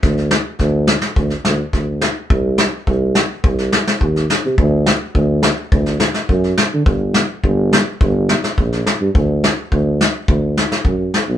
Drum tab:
SD |ooo-o-oo-oo-o-o-|--o---o--ooo-oo-|--o---o--ooo-oo-|--o---o---oo-oo-|
BD |o---o---o---o---|o---o---o---o---|o---o---o---o---|o---o---o---o---|

SD |--o---o---oo--o-|
BD |o---o---o---o---|